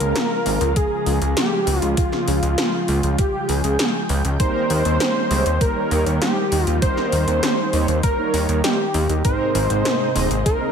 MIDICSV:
0, 0, Header, 1, 6, 480
1, 0, Start_track
1, 0, Tempo, 606061
1, 1563, Time_signature, 4, 2, 24, 8
1, 8489, End_track
2, 0, Start_track
2, 0, Title_t, "Analog synth lead"
2, 0, Program_c, 0, 81
2, 0, Note_on_c, 0, 70, 127
2, 605, Note_on_c, 0, 68, 114
2, 617, Note_off_c, 0, 70, 0
2, 1081, Note_off_c, 0, 68, 0
2, 1086, Note_on_c, 0, 67, 106
2, 1427, Note_off_c, 0, 67, 0
2, 1427, Note_on_c, 0, 65, 106
2, 1565, Note_off_c, 0, 65, 0
2, 1565, Note_on_c, 0, 65, 107
2, 2523, Note_on_c, 0, 67, 99
2, 2535, Note_off_c, 0, 65, 0
2, 2763, Note_on_c, 0, 68, 91
2, 2775, Note_off_c, 0, 67, 0
2, 3243, Note_off_c, 0, 68, 0
2, 3483, Note_on_c, 0, 72, 127
2, 4442, Note_on_c, 0, 70, 112
2, 4454, Note_off_c, 0, 72, 0
2, 4917, Note_off_c, 0, 70, 0
2, 4922, Note_on_c, 0, 67, 104
2, 5270, Note_off_c, 0, 67, 0
2, 5270, Note_on_c, 0, 65, 104
2, 5371, Note_off_c, 0, 65, 0
2, 5402, Note_on_c, 0, 72, 127
2, 6331, Note_off_c, 0, 72, 0
2, 6363, Note_on_c, 0, 70, 109
2, 6811, Note_off_c, 0, 70, 0
2, 6842, Note_on_c, 0, 67, 99
2, 7291, Note_off_c, 0, 67, 0
2, 7323, Note_on_c, 0, 72, 122
2, 8251, Note_off_c, 0, 72, 0
2, 8281, Note_on_c, 0, 70, 104
2, 8489, Note_off_c, 0, 70, 0
2, 8489, End_track
3, 0, Start_track
3, 0, Title_t, "Analog polysynth"
3, 0, Program_c, 1, 90
3, 3483, Note_on_c, 1, 55, 104
3, 3483, Note_on_c, 1, 58, 93
3, 3483, Note_on_c, 1, 63, 93
3, 3483, Note_on_c, 1, 70, 112
3, 3814, Note_off_c, 1, 55, 0
3, 3814, Note_off_c, 1, 58, 0
3, 3814, Note_off_c, 1, 63, 0
3, 3814, Note_off_c, 1, 70, 0
3, 3843, Note_on_c, 1, 55, 76
3, 3843, Note_on_c, 1, 58, 70
3, 3843, Note_on_c, 1, 61, 83
3, 3843, Note_on_c, 1, 63, 67
3, 4174, Note_off_c, 1, 55, 0
3, 4174, Note_off_c, 1, 58, 0
3, 4174, Note_off_c, 1, 61, 0
3, 4174, Note_off_c, 1, 63, 0
3, 4203, Note_on_c, 1, 55, 105
3, 4203, Note_on_c, 1, 58, 89
3, 4203, Note_on_c, 1, 63, 92
3, 4203, Note_on_c, 1, 73, 113
3, 4319, Note_off_c, 1, 55, 0
3, 4319, Note_off_c, 1, 58, 0
3, 4319, Note_off_c, 1, 63, 0
3, 4319, Note_off_c, 1, 73, 0
3, 4562, Note_on_c, 1, 58, 83
3, 4562, Note_on_c, 1, 63, 85
3, 4563, Note_on_c, 1, 55, 90
3, 4563, Note_on_c, 1, 73, 99
3, 4894, Note_off_c, 1, 55, 0
3, 4894, Note_off_c, 1, 58, 0
3, 4894, Note_off_c, 1, 63, 0
3, 4894, Note_off_c, 1, 73, 0
3, 4922, Note_on_c, 1, 55, 97
3, 4922, Note_on_c, 1, 58, 89
3, 4922, Note_on_c, 1, 63, 90
3, 4922, Note_on_c, 1, 72, 108
3, 5039, Note_off_c, 1, 55, 0
3, 5039, Note_off_c, 1, 58, 0
3, 5039, Note_off_c, 1, 63, 0
3, 5039, Note_off_c, 1, 72, 0
3, 5402, Note_on_c, 1, 55, 102
3, 5402, Note_on_c, 1, 58, 94
3, 5402, Note_on_c, 1, 63, 94
3, 5402, Note_on_c, 1, 70, 110
3, 5734, Note_off_c, 1, 55, 0
3, 5734, Note_off_c, 1, 58, 0
3, 5734, Note_off_c, 1, 63, 0
3, 5734, Note_off_c, 1, 70, 0
3, 5763, Note_on_c, 1, 55, 74
3, 5763, Note_on_c, 1, 58, 67
3, 5763, Note_on_c, 1, 61, 82
3, 5763, Note_on_c, 1, 63, 69
3, 6094, Note_off_c, 1, 55, 0
3, 6094, Note_off_c, 1, 58, 0
3, 6094, Note_off_c, 1, 61, 0
3, 6094, Note_off_c, 1, 63, 0
3, 6123, Note_on_c, 1, 55, 102
3, 6123, Note_on_c, 1, 58, 90
3, 6123, Note_on_c, 1, 63, 93
3, 6123, Note_on_c, 1, 73, 109
3, 6239, Note_off_c, 1, 55, 0
3, 6239, Note_off_c, 1, 58, 0
3, 6239, Note_off_c, 1, 63, 0
3, 6239, Note_off_c, 1, 73, 0
3, 6483, Note_on_c, 1, 55, 91
3, 6483, Note_on_c, 1, 58, 85
3, 6483, Note_on_c, 1, 63, 85
3, 6483, Note_on_c, 1, 73, 99
3, 6814, Note_off_c, 1, 55, 0
3, 6814, Note_off_c, 1, 58, 0
3, 6814, Note_off_c, 1, 63, 0
3, 6814, Note_off_c, 1, 73, 0
3, 6843, Note_on_c, 1, 63, 88
3, 6844, Note_on_c, 1, 55, 97
3, 6844, Note_on_c, 1, 58, 88
3, 6844, Note_on_c, 1, 72, 106
3, 6959, Note_off_c, 1, 63, 0
3, 6960, Note_off_c, 1, 55, 0
3, 6960, Note_off_c, 1, 58, 0
3, 6960, Note_off_c, 1, 72, 0
3, 7324, Note_on_c, 1, 44, 105
3, 7324, Note_on_c, 1, 56, 96
3, 7324, Note_on_c, 1, 60, 95
3, 7324, Note_on_c, 1, 63, 95
3, 7324, Note_on_c, 1, 70, 115
3, 7655, Note_off_c, 1, 44, 0
3, 7655, Note_off_c, 1, 56, 0
3, 7655, Note_off_c, 1, 60, 0
3, 7655, Note_off_c, 1, 63, 0
3, 7655, Note_off_c, 1, 70, 0
3, 7684, Note_on_c, 1, 44, 75
3, 7684, Note_on_c, 1, 56, 70
3, 7684, Note_on_c, 1, 60, 70
3, 7684, Note_on_c, 1, 63, 69
3, 7684, Note_on_c, 1, 75, 84
3, 8014, Note_off_c, 1, 60, 0
3, 8014, Note_off_c, 1, 75, 0
3, 8015, Note_off_c, 1, 44, 0
3, 8015, Note_off_c, 1, 56, 0
3, 8015, Note_off_c, 1, 63, 0
3, 8043, Note_on_c, 1, 63, 91
3, 8044, Note_on_c, 1, 44, 102
3, 8044, Note_on_c, 1, 56, 93
3, 8044, Note_on_c, 1, 60, 90
3, 8044, Note_on_c, 1, 75, 112
3, 8159, Note_off_c, 1, 60, 0
3, 8159, Note_off_c, 1, 63, 0
3, 8160, Note_off_c, 1, 44, 0
3, 8160, Note_off_c, 1, 56, 0
3, 8160, Note_off_c, 1, 75, 0
3, 8403, Note_on_c, 1, 44, 93
3, 8403, Note_on_c, 1, 60, 82
3, 8404, Note_on_c, 1, 56, 84
3, 8404, Note_on_c, 1, 63, 85
3, 8404, Note_on_c, 1, 75, 103
3, 8489, Note_off_c, 1, 44, 0
3, 8489, Note_off_c, 1, 56, 0
3, 8489, Note_off_c, 1, 60, 0
3, 8489, Note_off_c, 1, 63, 0
3, 8489, Note_off_c, 1, 75, 0
3, 8489, End_track
4, 0, Start_track
4, 0, Title_t, "Analog synth pad"
4, 0, Program_c, 2, 89
4, 0, Note_on_c, 2, 49, 86
4, 0, Note_on_c, 2, 53, 76
4, 0, Note_on_c, 2, 56, 76
4, 0, Note_on_c, 2, 65, 92
4, 1543, Note_off_c, 2, 65, 0
4, 1565, Note_on_c, 2, 79, 93
4, 3450, Note_off_c, 2, 56, 0
4, 3451, Note_off_c, 2, 49, 0
4, 3451, Note_off_c, 2, 53, 0
4, 3482, Note_on_c, 2, 51, 85
4, 3482, Note_on_c, 2, 55, 79
4, 3483, Note_on_c, 2, 58, 74
4, 5384, Note_off_c, 2, 58, 0
4, 7291, Note_off_c, 2, 51, 0
4, 7291, Note_off_c, 2, 55, 0
4, 7292, Note_off_c, 2, 79, 0
4, 7323, Note_on_c, 2, 56, 78
4, 7323, Note_on_c, 2, 58, 78
4, 7324, Note_on_c, 2, 48, 84
4, 7324, Note_on_c, 2, 63, 94
4, 8489, Note_off_c, 2, 48, 0
4, 8489, Note_off_c, 2, 56, 0
4, 8489, Note_off_c, 2, 58, 0
4, 8489, Note_off_c, 2, 63, 0
4, 8489, End_track
5, 0, Start_track
5, 0, Title_t, "Analog synth bass"
5, 0, Program_c, 3, 38
5, 3, Note_on_c, 3, 37, 86
5, 108, Note_off_c, 3, 37, 0
5, 363, Note_on_c, 3, 32, 95
5, 469, Note_off_c, 3, 32, 0
5, 482, Note_on_c, 3, 37, 83
5, 588, Note_off_c, 3, 37, 0
5, 843, Note_on_c, 3, 37, 94
5, 948, Note_off_c, 3, 37, 0
5, 963, Note_on_c, 3, 37, 83
5, 1069, Note_off_c, 3, 37, 0
5, 1323, Note_on_c, 3, 37, 94
5, 1428, Note_off_c, 3, 37, 0
5, 1443, Note_on_c, 3, 37, 82
5, 1549, Note_off_c, 3, 37, 0
5, 1803, Note_on_c, 3, 37, 93
5, 1908, Note_off_c, 3, 37, 0
5, 1923, Note_on_c, 3, 37, 88
5, 2028, Note_off_c, 3, 37, 0
5, 2284, Note_on_c, 3, 37, 99
5, 2389, Note_off_c, 3, 37, 0
5, 2404, Note_on_c, 3, 37, 81
5, 2509, Note_off_c, 3, 37, 0
5, 2764, Note_on_c, 3, 37, 92
5, 2869, Note_off_c, 3, 37, 0
5, 2884, Note_on_c, 3, 37, 86
5, 2989, Note_off_c, 3, 37, 0
5, 3244, Note_on_c, 3, 37, 94
5, 3349, Note_off_c, 3, 37, 0
5, 3364, Note_on_c, 3, 37, 85
5, 3469, Note_off_c, 3, 37, 0
5, 3724, Note_on_c, 3, 39, 96
5, 3829, Note_off_c, 3, 39, 0
5, 3844, Note_on_c, 3, 39, 84
5, 3949, Note_off_c, 3, 39, 0
5, 4204, Note_on_c, 3, 37, 97
5, 4309, Note_off_c, 3, 37, 0
5, 4325, Note_on_c, 3, 39, 81
5, 4429, Note_off_c, 3, 39, 0
5, 4684, Note_on_c, 3, 39, 94
5, 4789, Note_off_c, 3, 39, 0
5, 4803, Note_on_c, 3, 39, 85
5, 4908, Note_off_c, 3, 39, 0
5, 5163, Note_on_c, 3, 39, 93
5, 5268, Note_off_c, 3, 39, 0
5, 5284, Note_on_c, 3, 39, 84
5, 5389, Note_off_c, 3, 39, 0
5, 5643, Note_on_c, 3, 39, 96
5, 5748, Note_off_c, 3, 39, 0
5, 5763, Note_on_c, 3, 39, 86
5, 5868, Note_off_c, 3, 39, 0
5, 6123, Note_on_c, 3, 39, 96
5, 6228, Note_off_c, 3, 39, 0
5, 6243, Note_on_c, 3, 39, 83
5, 6348, Note_off_c, 3, 39, 0
5, 6603, Note_on_c, 3, 39, 94
5, 6708, Note_off_c, 3, 39, 0
5, 6723, Note_on_c, 3, 39, 82
5, 6828, Note_off_c, 3, 39, 0
5, 7083, Note_on_c, 3, 39, 94
5, 7188, Note_off_c, 3, 39, 0
5, 7202, Note_on_c, 3, 39, 84
5, 7308, Note_off_c, 3, 39, 0
5, 7563, Note_on_c, 3, 32, 97
5, 7668, Note_off_c, 3, 32, 0
5, 7683, Note_on_c, 3, 32, 85
5, 7789, Note_off_c, 3, 32, 0
5, 8043, Note_on_c, 3, 27, 101
5, 8148, Note_off_c, 3, 27, 0
5, 8163, Note_on_c, 3, 32, 86
5, 8268, Note_off_c, 3, 32, 0
5, 8489, End_track
6, 0, Start_track
6, 0, Title_t, "Drums"
6, 3, Note_on_c, 9, 42, 70
6, 83, Note_off_c, 9, 42, 0
6, 123, Note_on_c, 9, 38, 127
6, 123, Note_on_c, 9, 42, 96
6, 202, Note_off_c, 9, 38, 0
6, 202, Note_off_c, 9, 42, 0
6, 363, Note_on_c, 9, 46, 78
6, 442, Note_off_c, 9, 46, 0
6, 483, Note_on_c, 9, 42, 72
6, 562, Note_off_c, 9, 42, 0
6, 603, Note_on_c, 9, 36, 126
6, 603, Note_on_c, 9, 42, 96
6, 682, Note_off_c, 9, 42, 0
6, 683, Note_off_c, 9, 36, 0
6, 843, Note_on_c, 9, 46, 77
6, 922, Note_off_c, 9, 46, 0
6, 963, Note_on_c, 9, 42, 71
6, 1042, Note_off_c, 9, 42, 0
6, 1083, Note_on_c, 9, 38, 122
6, 1083, Note_on_c, 9, 42, 97
6, 1162, Note_off_c, 9, 38, 0
6, 1162, Note_off_c, 9, 42, 0
6, 1323, Note_on_c, 9, 46, 79
6, 1402, Note_off_c, 9, 46, 0
6, 1443, Note_on_c, 9, 42, 67
6, 1522, Note_off_c, 9, 42, 0
6, 1563, Note_on_c, 9, 36, 126
6, 1563, Note_on_c, 9, 42, 95
6, 1642, Note_off_c, 9, 42, 0
6, 1643, Note_off_c, 9, 36, 0
6, 1682, Note_on_c, 9, 38, 38
6, 1762, Note_off_c, 9, 38, 0
6, 1803, Note_on_c, 9, 46, 78
6, 1882, Note_off_c, 9, 46, 0
6, 1922, Note_on_c, 9, 42, 67
6, 2002, Note_off_c, 9, 42, 0
6, 2042, Note_on_c, 9, 38, 127
6, 2042, Note_on_c, 9, 42, 95
6, 2122, Note_off_c, 9, 38, 0
6, 2122, Note_off_c, 9, 42, 0
6, 2282, Note_on_c, 9, 46, 75
6, 2362, Note_off_c, 9, 46, 0
6, 2403, Note_on_c, 9, 42, 68
6, 2482, Note_off_c, 9, 42, 0
6, 2523, Note_on_c, 9, 36, 124
6, 2523, Note_on_c, 9, 42, 92
6, 2602, Note_off_c, 9, 42, 0
6, 2603, Note_off_c, 9, 36, 0
6, 2762, Note_on_c, 9, 46, 74
6, 2842, Note_off_c, 9, 46, 0
6, 2883, Note_on_c, 9, 42, 68
6, 2962, Note_off_c, 9, 42, 0
6, 3003, Note_on_c, 9, 38, 125
6, 3003, Note_on_c, 9, 42, 92
6, 3082, Note_off_c, 9, 38, 0
6, 3082, Note_off_c, 9, 42, 0
6, 3242, Note_on_c, 9, 46, 78
6, 3322, Note_off_c, 9, 46, 0
6, 3363, Note_on_c, 9, 42, 65
6, 3443, Note_off_c, 9, 42, 0
6, 3483, Note_on_c, 9, 36, 122
6, 3483, Note_on_c, 9, 42, 92
6, 3562, Note_off_c, 9, 42, 0
6, 3563, Note_off_c, 9, 36, 0
6, 3723, Note_on_c, 9, 46, 79
6, 3802, Note_off_c, 9, 46, 0
6, 3843, Note_on_c, 9, 42, 65
6, 3922, Note_off_c, 9, 42, 0
6, 3963, Note_on_c, 9, 38, 124
6, 3963, Note_on_c, 9, 42, 93
6, 4042, Note_off_c, 9, 38, 0
6, 4042, Note_off_c, 9, 42, 0
6, 4203, Note_on_c, 9, 46, 74
6, 4282, Note_off_c, 9, 46, 0
6, 4323, Note_on_c, 9, 42, 67
6, 4402, Note_off_c, 9, 42, 0
6, 4443, Note_on_c, 9, 36, 118
6, 4443, Note_on_c, 9, 42, 88
6, 4522, Note_off_c, 9, 36, 0
6, 4522, Note_off_c, 9, 42, 0
6, 4684, Note_on_c, 9, 46, 79
6, 4763, Note_off_c, 9, 46, 0
6, 4803, Note_on_c, 9, 42, 64
6, 4883, Note_off_c, 9, 42, 0
6, 4923, Note_on_c, 9, 38, 122
6, 4923, Note_on_c, 9, 42, 89
6, 5002, Note_off_c, 9, 38, 0
6, 5002, Note_off_c, 9, 42, 0
6, 5163, Note_on_c, 9, 46, 77
6, 5242, Note_off_c, 9, 46, 0
6, 5283, Note_on_c, 9, 42, 63
6, 5363, Note_off_c, 9, 42, 0
6, 5403, Note_on_c, 9, 36, 117
6, 5403, Note_on_c, 9, 42, 91
6, 5482, Note_off_c, 9, 42, 0
6, 5483, Note_off_c, 9, 36, 0
6, 5523, Note_on_c, 9, 38, 36
6, 5602, Note_off_c, 9, 38, 0
6, 5643, Note_on_c, 9, 46, 81
6, 5722, Note_off_c, 9, 46, 0
6, 5763, Note_on_c, 9, 42, 66
6, 5842, Note_off_c, 9, 42, 0
6, 5884, Note_on_c, 9, 38, 122
6, 5884, Note_on_c, 9, 42, 93
6, 5963, Note_off_c, 9, 38, 0
6, 5963, Note_off_c, 9, 42, 0
6, 6123, Note_on_c, 9, 46, 79
6, 6203, Note_off_c, 9, 46, 0
6, 6243, Note_on_c, 9, 42, 68
6, 6323, Note_off_c, 9, 42, 0
6, 6363, Note_on_c, 9, 42, 88
6, 6364, Note_on_c, 9, 36, 114
6, 6442, Note_off_c, 9, 42, 0
6, 6443, Note_off_c, 9, 36, 0
6, 6604, Note_on_c, 9, 46, 79
6, 6683, Note_off_c, 9, 46, 0
6, 6724, Note_on_c, 9, 42, 67
6, 6803, Note_off_c, 9, 42, 0
6, 6843, Note_on_c, 9, 38, 119
6, 6843, Note_on_c, 9, 42, 91
6, 6922, Note_off_c, 9, 38, 0
6, 6922, Note_off_c, 9, 42, 0
6, 7083, Note_on_c, 9, 46, 79
6, 7163, Note_off_c, 9, 46, 0
6, 7203, Note_on_c, 9, 42, 65
6, 7282, Note_off_c, 9, 42, 0
6, 7323, Note_on_c, 9, 42, 93
6, 7324, Note_on_c, 9, 36, 115
6, 7402, Note_off_c, 9, 42, 0
6, 7403, Note_off_c, 9, 36, 0
6, 7563, Note_on_c, 9, 46, 83
6, 7643, Note_off_c, 9, 46, 0
6, 7683, Note_on_c, 9, 42, 66
6, 7763, Note_off_c, 9, 42, 0
6, 7804, Note_on_c, 9, 38, 116
6, 7804, Note_on_c, 9, 42, 95
6, 7883, Note_off_c, 9, 38, 0
6, 7883, Note_off_c, 9, 42, 0
6, 8044, Note_on_c, 9, 46, 82
6, 8123, Note_off_c, 9, 46, 0
6, 8164, Note_on_c, 9, 42, 69
6, 8243, Note_off_c, 9, 42, 0
6, 8284, Note_on_c, 9, 36, 115
6, 8284, Note_on_c, 9, 42, 91
6, 8363, Note_off_c, 9, 36, 0
6, 8363, Note_off_c, 9, 42, 0
6, 8489, End_track
0, 0, End_of_file